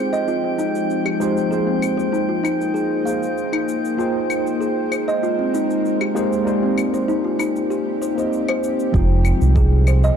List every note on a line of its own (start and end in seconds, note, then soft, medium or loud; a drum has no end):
0.00 1.49 F3 medium
0.00 1.16 G#3 medium
0.00 1.49 G#3 medium
0.00 1.48 C4 medium
0.00 1.17 D#4 medium
0.00 1.17 F4 medium
0.00 1.48 G4 medium
0.00 0.11 C5 medium
0.00 1.18 C5 medium
0.00 1.18 G5 medium
0.00 8.95 G5 medium
0.13 0.26 D#5 medium
0.13 cabasa soft
0.28 0.42 F4 medium
0.28 cabasa soft
0.44 0.58 C4 medium
0.58 0.68 D#4 medium
0.58 cabasa medium
0.75 cabasa soft
0.90 cabasa soft
1.05 1.14 G4 medium
1.05 claves medium
1.20 1.48 G#3 medium
1.20 1.48 D#4 medium
1.20 1.48 F4 medium
1.20 1.48 G4 medium
1.20 1.50 C5 medium
1.20 1.48 C5 loud
1.20 cabasa medium
1.37 cabasa soft
1.49 3.02 A#3 medium
1.49 3.97 A#3 medium
1.49 3.02 D#4 medium
1.49 3.03 F4 medium
1.49 3.97 F4 medium
1.49 1.60 G#4 medium
1.49 3.03 G#4 medium
1.49 6.43 C5 medium
1.49 3.97 D#5 medium
1.49 cabasa soft
1.53 3.04 C5 medium
1.67 1.82 C4 medium
1.82 cabasa medium
1.82 claves medium
1.98 2.12 C5 medium
1.98 cabasa soft
2.12 2.28 D#4 medium
2.12 cabasa soft
2.29 2.43 F4 medium
2.43 2.73 D#4 medium
2.43 cabasa medium
2.43 claves medium
2.61 cabasa soft
2.74 2.84 G#4 medium
2.74 cabasa soft
3.04 3.94 A#3 medium
3.04 3.95 D#4 medium
3.04 3.96 F4 medium
3.04 3.96 G#4 medium
3.04 3.51 F5 medium
3.04 cabasa medium
3.09 3.97 C5 medium
3.23 cabasa soft
3.38 cabasa soft
3.53 3.67 D#4 medium
3.53 claves medium
3.69 cabasa medium
3.85 cabasa soft
3.97 6.44 G#3 medium
3.97 6.11 A#3 medium
3.97 6.12 D#4 medium
3.97 6.44 D#4 medium
3.97 4.59 F4 medium
3.97 6.12 G#4 medium
3.97 6.44 A#4 medium
3.97 6.13 C5 medium
3.97 6.12 G5 medium
3.97 cabasa soft
4.30 cabasa medium
4.30 claves medium
4.47 cabasa soft
4.61 4.90 G#4 medium
4.61 cabasa soft
4.92 5.06 C5 medium
4.92 cabasa medium
4.92 claves medium
5.08 5.21 D#5 medium
5.08 cabasa soft
5.23 5.37 F4 medium
5.23 cabasa soft
5.39 5.53 C4 medium
5.54 5.63 D#4 medium
5.54 cabasa medium
5.70 cabasa soft
5.85 cabasa soft
6.01 6.09 G4 medium
6.01 claves medium
6.15 6.42 A#3 medium
6.15 6.43 D#4 medium
6.15 6.43 G4 medium
6.15 6.43 G#4 medium
6.15 6.45 C5 medium
6.15 6.43 C5 loud
6.15 cabasa medium
6.33 cabasa soft
6.44 7.96 A#3 medium
6.44 8.92 C4 medium
6.44 7.97 D#4 medium
6.44 7.98 G4 medium
6.44 6.56 G4 medium
6.44 8.92 G4 medium
6.44 7.97 D5 medium
6.44 cabasa soft
6.48 7.98 C5 medium
6.63 6.77 C4 medium
6.78 cabasa medium
6.78 claves medium
6.94 7.08 C5 medium
6.94 cabasa soft
7.08 7.24 D#4 medium
7.08 cabasa soft
7.24 7.38 F4 medium
7.39 7.69 D#4 medium
7.39 cabasa medium
7.39 claves medium
7.56 cabasa soft
7.70 7.79 G4 medium
7.70 cabasa soft
8.02 8.16 C5 medium
8.02 cabasa medium
8.15 8.89 A#3 medium
8.15 8.90 D#4 medium
8.15 8.91 G4 medium
8.15 8.31 C5 medium
8.15 8.91 D#5 medium
8.15 cabasa soft
8.33 cabasa soft
8.48 8.63 C5 loud
8.48 claves medium
8.64 cabasa medium
8.80 cabasa soft
8.92 9.33 F1 loud
8.92 10.17 F3 medium
8.92 10.17 G#3 medium
8.92 10.17 C4 medium
8.92 10.17 D#4 medium
8.92 9.55 F4 medium
8.92 10.17 C5 medium
8.92 10.17 F5 medium
8.92 10.17 G5 medium
8.92 kick loud
8.92 cabasa soft
9.25 cabasa medium
9.25 claves medium
9.42 10.11 C2 medium
9.42 cabasa soft
9.56 9.86 G#4 medium
9.56 kick loud
9.56 cabasa soft
9.87 10.02 C5 medium
9.87 cabasa medium
9.87 claves medium
10.04 10.17 D#5 medium
10.04 cabasa soft